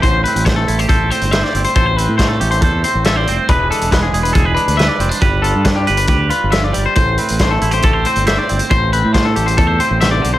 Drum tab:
HH |x-xxx-xxx-xxx-xx|x-x-x-xxx-x-x-x-|x-xxx-xxx-xxx-xx|x-x-x-xxx-x-x-x-|
SD |----o-------oo--|----o-------o---|----o-------o---|----o-------o---|
BD |o---o---o-------|o---o---o-------|o---o---o-------|o---o---o-------|

HH |x-xxx-xxx-xxx-xx|x-x-x-xxx-x-x-x-|
SD |----o-------o---|----o-------o---|
BD |o---o---o-------|o---o---o-------|